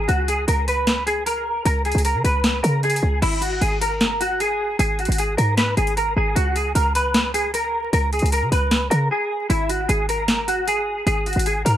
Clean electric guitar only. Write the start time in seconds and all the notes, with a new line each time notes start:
0.08 F#4
0.28 G#4
0.48 A#4
0.68 B4
1.06 G#4
1.26 A#4
1.65 A#4
1.85 G#4
2.05 A#4
2.25 B4
2.63 A#4
2.84 G#4
3.22 E4
3.42 F#4
3.61 G#4
3.81 A#4
4.20 F#4
4.40 G#4
4.79 G#4
4.99 F#4
5.19 G#4
5.37 A#4
5.57 B4
5.77 G#4
5.97 A#4
6.17 G#4
6.35 F#4
6.56 G#4
6.75 A#4
6.95 B4
7.34 G#4
7.54 A#4
7.93 A#4
8.13 G#4
8.32 A#4
8.52 B4
8.90 A#4
9.11 G#4
9.50 E4
9.69 F#4
9.89 G#4
10.09 A#4
10.48 F#4
10.68 G#4
11.07 G#4
11.26 F#4
11.46 G#4
11.65 A#4